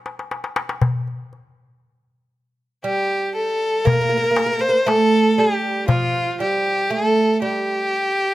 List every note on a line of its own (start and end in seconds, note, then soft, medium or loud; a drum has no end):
0.06 darbuka tek soft
0.19 darbuka ka medium
0.31 darbuka tek medium
0.44 darbuka ka medium
0.56 darbuka tek medium
0.69 darbuka ka medium
0.81 darbuka dum medium
1.08 darbuka ka soft
1.33 darbuka ka soft
2.84 3.85 G3 medium
2.84 3.32 G4 medium
3.35 3.87 A4 medium
3.85 3.92 A#3 medium
3.85 4.62 A#4 medium
3.85 darbuka dum medium
3.93 4.00 A#3 medium
4.01 4.08 A#3 medium
4.09 4.16 A#3 medium
4.17 4.23 A#3 medium
4.24 4.30 A#3 soft
4.31 4.38 A#3 medium
4.36 4.45 A#3 soft
4.36 darbuka tek medium
4.46 4.51 A#3 medium
4.53 4.58 A#3 soft
4.59 4.68 A#3 medium
4.59 4.88 C5 medium
4.69 4.77 A#3 medium
4.86 5.38 A3 medium
4.86 5.40 A4 loud
4.86 darbuka tek medium
5.38 5.91 G3 medium
5.38 5.88 G4 medium
5.88 6.41 F3 medium
5.88 6.36 F4 medium
5.88 darbuka dum medium
6.15 darbuka ka soft
6.40 6.90 G3 medium
6.40 6.92 G4 medium
6.40 darbuka ka soft
6.90 7.41 A3 medium
6.90 7.42 A4 medium
7.42 8.34 G3 medium
7.42 8.34 G4 medium